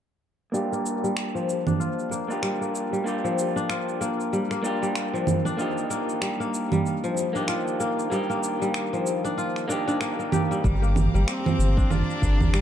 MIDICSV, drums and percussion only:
0, 0, Header, 1, 3, 480
1, 0, Start_track
1, 0, Key_signature, -2, "minor"
1, 0, Tempo, 631579
1, 408, Time_signature, 4, 2, 24, 8
1, 9584, End_track
2, 0, Start_track
2, 0, Title_t, "Udu"
2, 9429, Note_on_c, 9, 64, 92
2, 9505, Note_off_c, 9, 64, 0
2, 9584, End_track
3, 0, Start_track
3, 0, Title_t, "Drums"
3, 415, Note_on_c, 9, 82, 36
3, 491, Note_off_c, 9, 82, 0
3, 556, Note_on_c, 9, 82, 21
3, 632, Note_off_c, 9, 82, 0
3, 654, Note_on_c, 9, 82, 68
3, 730, Note_off_c, 9, 82, 0
3, 795, Note_on_c, 9, 82, 26
3, 871, Note_off_c, 9, 82, 0
3, 886, Note_on_c, 9, 26, 92
3, 893, Note_on_c, 9, 82, 42
3, 962, Note_off_c, 9, 26, 0
3, 969, Note_off_c, 9, 82, 0
3, 1036, Note_on_c, 9, 82, 17
3, 1112, Note_off_c, 9, 82, 0
3, 1136, Note_on_c, 9, 82, 66
3, 1212, Note_off_c, 9, 82, 0
3, 1267, Note_on_c, 9, 64, 50
3, 1274, Note_on_c, 9, 82, 29
3, 1343, Note_off_c, 9, 64, 0
3, 1350, Note_off_c, 9, 82, 0
3, 1375, Note_on_c, 9, 82, 36
3, 1451, Note_off_c, 9, 82, 0
3, 1515, Note_on_c, 9, 82, 20
3, 1591, Note_off_c, 9, 82, 0
3, 1613, Note_on_c, 9, 82, 66
3, 1689, Note_off_c, 9, 82, 0
3, 1754, Note_on_c, 9, 82, 28
3, 1830, Note_off_c, 9, 82, 0
3, 1846, Note_on_c, 9, 26, 92
3, 1853, Note_on_c, 9, 82, 39
3, 1922, Note_off_c, 9, 26, 0
3, 1929, Note_off_c, 9, 82, 0
3, 1994, Note_on_c, 9, 82, 18
3, 2070, Note_off_c, 9, 82, 0
3, 2093, Note_on_c, 9, 82, 62
3, 2169, Note_off_c, 9, 82, 0
3, 2233, Note_on_c, 9, 82, 28
3, 2309, Note_off_c, 9, 82, 0
3, 2333, Note_on_c, 9, 82, 38
3, 2409, Note_off_c, 9, 82, 0
3, 2473, Note_on_c, 9, 82, 20
3, 2549, Note_off_c, 9, 82, 0
3, 2574, Note_on_c, 9, 82, 74
3, 2650, Note_off_c, 9, 82, 0
3, 2715, Note_on_c, 9, 82, 30
3, 2791, Note_off_c, 9, 82, 0
3, 2808, Note_on_c, 9, 26, 92
3, 2815, Note_on_c, 9, 82, 40
3, 2884, Note_off_c, 9, 26, 0
3, 2891, Note_off_c, 9, 82, 0
3, 2953, Note_on_c, 9, 82, 19
3, 3029, Note_off_c, 9, 82, 0
3, 3054, Note_on_c, 9, 82, 66
3, 3130, Note_off_c, 9, 82, 0
3, 3195, Note_on_c, 9, 82, 31
3, 3271, Note_off_c, 9, 82, 0
3, 3294, Note_on_c, 9, 82, 41
3, 3370, Note_off_c, 9, 82, 0
3, 3427, Note_on_c, 9, 26, 31
3, 3434, Note_on_c, 9, 82, 22
3, 3503, Note_off_c, 9, 26, 0
3, 3510, Note_off_c, 9, 82, 0
3, 3531, Note_on_c, 9, 82, 71
3, 3607, Note_off_c, 9, 82, 0
3, 3673, Note_on_c, 9, 82, 28
3, 3749, Note_off_c, 9, 82, 0
3, 3766, Note_on_c, 9, 26, 99
3, 3773, Note_on_c, 9, 82, 42
3, 3842, Note_off_c, 9, 26, 0
3, 3849, Note_off_c, 9, 82, 0
3, 3914, Note_on_c, 9, 82, 19
3, 3990, Note_off_c, 9, 82, 0
3, 4005, Note_on_c, 9, 64, 63
3, 4012, Note_on_c, 9, 82, 69
3, 4081, Note_off_c, 9, 64, 0
3, 4088, Note_off_c, 9, 82, 0
3, 4153, Note_on_c, 9, 82, 32
3, 4229, Note_off_c, 9, 82, 0
3, 4250, Note_on_c, 9, 82, 39
3, 4326, Note_off_c, 9, 82, 0
3, 4392, Note_on_c, 9, 82, 21
3, 4468, Note_off_c, 9, 82, 0
3, 4491, Note_on_c, 9, 82, 77
3, 4567, Note_off_c, 9, 82, 0
3, 4632, Note_on_c, 9, 82, 29
3, 4708, Note_off_c, 9, 82, 0
3, 4726, Note_on_c, 9, 26, 98
3, 4732, Note_on_c, 9, 82, 45
3, 4802, Note_off_c, 9, 26, 0
3, 4808, Note_off_c, 9, 82, 0
3, 4874, Note_on_c, 9, 82, 20
3, 4950, Note_off_c, 9, 82, 0
3, 4972, Note_on_c, 9, 82, 70
3, 5048, Note_off_c, 9, 82, 0
3, 5106, Note_on_c, 9, 64, 51
3, 5113, Note_on_c, 9, 82, 31
3, 5182, Note_off_c, 9, 64, 0
3, 5189, Note_off_c, 9, 82, 0
3, 5215, Note_on_c, 9, 82, 42
3, 5291, Note_off_c, 9, 82, 0
3, 5352, Note_on_c, 9, 82, 21
3, 5428, Note_off_c, 9, 82, 0
3, 5451, Note_on_c, 9, 82, 72
3, 5527, Note_off_c, 9, 82, 0
3, 5592, Note_on_c, 9, 82, 31
3, 5668, Note_off_c, 9, 82, 0
3, 5684, Note_on_c, 9, 26, 90
3, 5691, Note_on_c, 9, 82, 41
3, 5760, Note_off_c, 9, 26, 0
3, 5767, Note_off_c, 9, 82, 0
3, 5834, Note_on_c, 9, 82, 20
3, 5910, Note_off_c, 9, 82, 0
3, 5932, Note_on_c, 9, 82, 71
3, 6008, Note_off_c, 9, 82, 0
3, 6074, Note_on_c, 9, 82, 34
3, 6150, Note_off_c, 9, 82, 0
3, 6172, Note_on_c, 9, 82, 42
3, 6248, Note_off_c, 9, 82, 0
3, 6313, Note_on_c, 9, 82, 21
3, 6389, Note_off_c, 9, 82, 0
3, 6411, Note_on_c, 9, 82, 77
3, 6487, Note_off_c, 9, 82, 0
3, 6554, Note_on_c, 9, 82, 29
3, 6630, Note_off_c, 9, 82, 0
3, 6644, Note_on_c, 9, 26, 92
3, 6651, Note_on_c, 9, 82, 42
3, 6720, Note_off_c, 9, 26, 0
3, 6727, Note_off_c, 9, 82, 0
3, 6793, Note_on_c, 9, 82, 19
3, 6869, Note_off_c, 9, 82, 0
3, 6890, Note_on_c, 9, 82, 71
3, 6966, Note_off_c, 9, 82, 0
3, 7033, Note_on_c, 9, 82, 30
3, 7109, Note_off_c, 9, 82, 0
3, 7134, Note_on_c, 9, 82, 39
3, 7210, Note_off_c, 9, 82, 0
3, 7268, Note_on_c, 9, 26, 30
3, 7275, Note_on_c, 9, 82, 21
3, 7344, Note_off_c, 9, 26, 0
3, 7351, Note_off_c, 9, 82, 0
3, 7374, Note_on_c, 9, 82, 72
3, 7450, Note_off_c, 9, 82, 0
3, 7513, Note_on_c, 9, 82, 30
3, 7589, Note_off_c, 9, 82, 0
3, 7605, Note_on_c, 9, 26, 91
3, 7612, Note_on_c, 9, 82, 45
3, 7681, Note_off_c, 9, 26, 0
3, 7688, Note_off_c, 9, 82, 0
3, 7751, Note_on_c, 9, 82, 20
3, 7827, Note_off_c, 9, 82, 0
3, 7845, Note_on_c, 9, 64, 65
3, 7852, Note_on_c, 9, 82, 67
3, 7921, Note_off_c, 9, 64, 0
3, 7928, Note_off_c, 9, 82, 0
3, 7994, Note_on_c, 9, 82, 34
3, 8070, Note_off_c, 9, 82, 0
3, 8088, Note_on_c, 9, 36, 98
3, 8093, Note_on_c, 9, 82, 42
3, 8164, Note_off_c, 9, 36, 0
3, 8169, Note_off_c, 9, 82, 0
3, 8235, Note_on_c, 9, 82, 20
3, 8311, Note_off_c, 9, 82, 0
3, 8330, Note_on_c, 9, 64, 78
3, 8337, Note_on_c, 9, 82, 70
3, 8406, Note_off_c, 9, 64, 0
3, 8413, Note_off_c, 9, 82, 0
3, 8477, Note_on_c, 9, 82, 30
3, 8553, Note_off_c, 9, 82, 0
3, 8571, Note_on_c, 9, 26, 102
3, 8578, Note_on_c, 9, 82, 42
3, 8647, Note_off_c, 9, 26, 0
3, 8654, Note_off_c, 9, 82, 0
3, 8712, Note_on_c, 9, 64, 74
3, 8719, Note_on_c, 9, 82, 21
3, 8788, Note_off_c, 9, 64, 0
3, 8795, Note_off_c, 9, 82, 0
3, 8818, Note_on_c, 9, 82, 66
3, 8894, Note_off_c, 9, 82, 0
3, 8949, Note_on_c, 9, 36, 94
3, 8957, Note_on_c, 9, 82, 32
3, 9025, Note_off_c, 9, 36, 0
3, 9033, Note_off_c, 9, 82, 0
3, 9048, Note_on_c, 9, 64, 66
3, 9055, Note_on_c, 9, 82, 40
3, 9124, Note_off_c, 9, 64, 0
3, 9131, Note_off_c, 9, 82, 0
3, 9198, Note_on_c, 9, 82, 20
3, 9274, Note_off_c, 9, 82, 0
3, 9289, Note_on_c, 9, 36, 61
3, 9295, Note_on_c, 9, 82, 69
3, 9365, Note_off_c, 9, 36, 0
3, 9371, Note_off_c, 9, 82, 0
3, 9429, Note_on_c, 9, 64, 71
3, 9436, Note_on_c, 9, 82, 31
3, 9505, Note_off_c, 9, 64, 0
3, 9512, Note_off_c, 9, 82, 0
3, 9528, Note_on_c, 9, 26, 98
3, 9535, Note_on_c, 9, 82, 43
3, 9584, Note_off_c, 9, 26, 0
3, 9584, Note_off_c, 9, 82, 0
3, 9584, End_track
0, 0, End_of_file